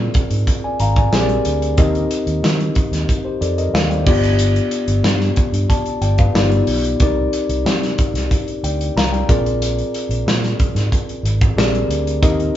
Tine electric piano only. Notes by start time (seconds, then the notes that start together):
Already playing: C4 F4 G#4 A#4 D5
0.64 D5 G#5
0.80 F5 A#5
0.97 D5 G#5
1.13 C4 G4 G#4 A#4 C5
1.21 D5
1.78 C4 D#4 G4 A#4 D#5
3.25 G4 C5
3.41 A4 D5
3.58 A#4 D#5
3.74 C5 F5
3.90 D5 G5
4.06 B3 D4 F4 G4 D5
5.69 D5 A5
6.02 D5 G5
6.19 B4 F5
6.35 B3 D#4 F4 G4 D5
7.01 C4 D#4 G4 A#4 D5
8.64 D5 G5
8.97 F5 A#5
9.12 D5 G5
9.29 C4 F4 G#4 A#4 D5
11.57 C4 G4 G#4 A#4 D5
12.22 C4 D#4 G4 A#4 D#5